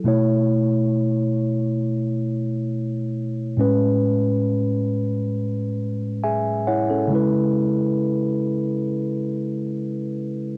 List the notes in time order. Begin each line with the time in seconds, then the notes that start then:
0.04 B2 A3 E4 C#5
3.57 A2 G#3 C#4 B4
6.24 G#4 E5 G#5
6.67 E4 C#5 F#5
6.90 C#4 A4
7.08 C#3 G#3
7.13 E4 B4